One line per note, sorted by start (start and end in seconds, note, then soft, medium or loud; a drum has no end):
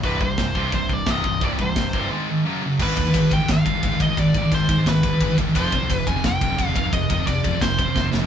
0.03 0.18 C1 loud
0.03 0.19 C2 medium
0.03 0.20 G2 medium
0.03 0.21 C3 medium
0.03 0.21 B4 medium
0.03 kick loud
0.03 open hi-hat medium
0.20 0.35 C1 medium
0.20 0.36 C2 medium
0.20 0.37 G2 medium
0.20 0.70 C5 medium
0.20 kick medium
0.38 0.53 C1 loud
0.38 0.54 C2 medium
0.38 0.54 G2 medium
0.38 0.56 C3 medium
0.38 kick loud
0.38 snare loud
0.38 open hi-hat medium
0.55 0.72 C2 medium
0.55 0.70 C2 medium
0.55 0.72 G2 medium
0.55 0.72 C3 medium
0.55 kick medium
0.72 1.02 C1 medium
0.72 0.89 C2 medium
0.72 0.89 G2 medium
0.72 1.08 C3 loud
0.72 0.93 C5 medium
0.72 kick loud
0.72 open hi-hat medium
0.89 1.06 C2 medium
0.89 1.06 G2 medium
0.89 1.11 D5 medium
0.89 kick medium
1.06 1.22 C1 medium
1.06 1.24 C2 medium
1.06 1.24 G2 loud
1.06 1.24 C3 loud
1.06 kick loud
1.06 snare loud
1.06 open hi-hat medium
1.11 1.44 D#5 medium
1.24 1.39 C1 medium
1.24 1.41 C2 medium
1.24 1.41 G2 medium
1.24 1.42 C3 medium
1.24 kick medium
1.41 1.56 C1 medium
1.41 1.58 C2 medium
1.41 1.58 G2 medium
1.41 1.59 C3 medium
1.41 1.50 D5 loud
1.41 kick loud
1.41 open hi-hat soft
1.59 1.74 C1 medium
1.59 1.75 C2 medium
1.59 1.75 G2 medium
1.59 2.09 C5 medium
1.59 kick medium
1.76 1.91 C1 medium
1.76 1.93 C2 medium
1.76 1.93 G2 medium
1.76 1.94 C3 medium
1.76 kick loud
1.76 snare loud
1.76 open hi-hat medium
1.93 2.08 G1 medium
1.93 2.10 C2 medium
1.93 2.11 G2 medium
1.93 2.11 C3 loud
1.93 kick medium
2.12 2.28 G#2 loud
2.12 2.28 D#3 medium
2.12 2.28 G#3 medium
2.29 2.44 G#2 medium
2.29 2.45 D#3 medium
2.45 2.61 F#2 loud
2.45 2.62 C#3 medium
2.45 2.62 F#3 loud
2.62 2.78 F#2 medium
2.62 2.79 C#3 medium
2.62 2.79 F#3 medium
2.79 2.92 G#1 medium
2.79 2.96 G#2 medium
2.79 2.96 D#3 medium
2.79 2.96 G#3 loud
2.79 3.34 B4 loud
2.79 kick medium
2.79 crash loud
2.97 3.09 D#2 medium
2.97 3.04 G#2 medium
2.97 3.04 D#3 medium
2.97 kick medium
2.97 ride medium
3.05 3.12 G#2 medium
3.05 3.13 D#3 medium
3.14 3.27 G#1 loud
3.14 3.30 G#2 medium
3.14 3.29 D#3 medium
3.14 kick loud
3.14 ride loud
3.31 3.44 G#1 medium
3.31 3.39 G#2 medium
3.31 3.39 D#3 medium
3.31 3.50 G5 loud
3.31 kick medium
3.31 ride medium
3.40 3.47 G#2 medium
3.40 3.47 D#3 medium
3.48 3.61 G#1 medium
3.48 3.64 G#2 medium
3.48 3.64 D#3 medium
3.48 3.98 F5 loud
3.48 kick medium
3.48 snare loud
3.48 ride loud
3.65 3.78 G#1 loud
3.65 3.73 G#2 medium
3.65 3.73 D#3 medium
3.65 kick loud
3.65 ride medium
3.74 3.82 G#2 medium
3.74 3.82 D#3 medium
3.83 3.95 G#1 medium
3.83 3.91 G#2 medium
3.83 3.91 D#3 medium
3.83 kick loud
3.83 ride loud
3.92 3.99 G#2 medium
3.92 3.99 D#3 medium
4.00 4.12 G#1 medium
4.00 4.07 G#2 medium
4.00 4.06 D#3 loud
4.00 4.19 D#5 medium
4.00 kick medium
4.00 ride medium
4.07 4.17 G#2 medium
4.07 4.16 D#3 medium
4.17 4.30 G#1 loud
4.17 4.33 G#2 loud
4.17 4.33 D#3 medium
4.17 4.54 D5 loud
4.17 kick medium
4.17 ride loud
4.34 4.47 G#1 medium
4.34 4.41 G#2 medium
4.34 4.41 D#3 medium
4.34 kick medium
4.34 ride medium
4.42 4.50 G#2 medium
4.42 4.50 D#3 medium
4.51 4.64 G#1 loud
4.51 4.67 G#2 medium
4.51 4.67 D#3 loud
4.51 4.88 C5 loud
4.51 kick medium
4.51 ride loud
4.69 4.81 G#2 loud
4.69 4.77 G#2 medium
4.69 4.77 D#3 loud
4.69 kick loud
4.69 ride medium
4.78 4.85 G#2 medium
4.78 4.85 D#3 medium
4.86 5.10 G#1 loud
4.86 5.02 G#2 medium
4.86 5.02 D#3 medium
4.86 5.36 B4 loud
4.86 kick medium
4.86 snare loud
4.86 ride loud
5.03 5.12 G#2 medium
5.03 5.12 D#3 medium
5.03 kick loud
5.03 ride medium
5.13 5.20 G#2 medium
5.13 5.21 D#3 medium
5.21 5.33 G#1 loud
5.21 5.28 G#2 medium
5.21 5.28 D#3 loud
5.21 kick medium
5.21 ride loud
5.29 5.37 G#2 medium
5.29 5.37 D#3 medium
5.38 5.50 G#1 medium
5.38 5.46 G#2 medium
5.38 5.46 D#3 medium
5.38 kick loud
5.38 ride medium
5.47 5.54 G#2 medium
5.47 5.55 D#3 medium
5.55 5.67 F1 loud
5.55 5.71 F2 loud
5.55 5.72 C3 loud
5.55 5.72 F3 loud
5.55 5.95 C5 loud
5.55 kick medium
5.55 ride loud
5.72 5.85 C2 loud
5.72 5.80 F2 medium
5.72 5.80 C3 medium
5.72 kick medium
5.72 ride medium
5.81 5.89 F2 medium
5.81 5.89 C3 medium
5.90 6.02 F1 loud
5.90 6.05 F2 medium
5.90 6.06 C3 medium
5.90 kick loud
5.90 ride loud
5.95 6.09 B4 loud
6.07 6.19 F1 loud
6.07 6.15 F2 medium
6.07 6.15 C3 medium
6.07 6.23 G#5 loud
6.07 kick medium
6.07 ride medium
6.16 6.24 F2 medium
6.16 6.24 C3 medium
6.24 6.36 F1 medium
6.24 6.40 F2 medium
6.24 6.40 C3 medium
6.24 6.68 G5 loud
6.24 kick medium
6.24 snare loud
6.24 ride loud
6.41 6.53 F1 loud
6.41 6.50 F2 medium
6.41 6.49 C3 medium
6.41 kick medium
6.41 ride medium
6.50 6.58 F2 medium
6.50 6.59 C3 medium
6.59 6.71 F1 loud
6.59 6.68 F2 medium
6.59 6.68 C3 medium
6.59 kick medium
6.59 ride loud
6.68 6.76 F2 medium
6.68 6.75 C3 medium
6.68 6.76 F5 loud
6.75 6.88 F1 loud
6.75 6.84 F2 medium
6.75 6.83 C3 medium
6.75 6.93 F5 loud
6.75 kick medium
6.75 ride medium
6.85 6.92 F2 medium
6.85 6.92 C3 medium
6.93 7.05 F1 loud
6.93 7.09 F2 medium
6.93 7.08 C3 loud
6.93 7.26 D#5 loud
6.93 kick medium
6.93 ride loud
7.10 7.22 F1 loud
7.10 7.18 F2 medium
7.10 7.18 C3 medium
7.10 kick medium
7.10 ride medium
7.19 7.27 F2 medium
7.19 7.27 C3 medium
7.27 7.39 F1 medium
7.27 7.43 F2 loud
7.27 7.43 C3 loud
7.27 7.63 D5 loud
7.27 kick medium
7.27 ride loud
7.44 7.57 F2 loud
7.44 7.52 F2 medium
7.44 7.51 C3 medium
7.44 kick medium
7.44 ride medium
7.53 7.61 F2 medium
7.53 7.62 C3 medium
7.61 7.86 F1 loud
7.61 7.78 F2 medium
7.61 7.78 C3 medium
7.61 8.10 C5 medium
7.61 kick medium
7.61 snare loud
7.61 ride loud
7.79 7.87 F2 medium
7.79 7.87 C3 medium
7.79 kick medium
7.79 ride medium
7.88 7.95 F2 medium
7.88 7.96 C3 medium
7.96 8.08 F1 medium
7.96 8.03 F2 medium
7.96 8.03 C3 loud
7.96 kick medium
7.96 snare medium
8.04 8.12 F2 medium
8.04 8.12 C3 medium
8.13 8.25 F1 loud
8.13 8.21 F2 medium
8.13 8.20 C3 medium
8.13 snare loud
8.22 8.27 F2 medium
8.22 8.27 C3 medium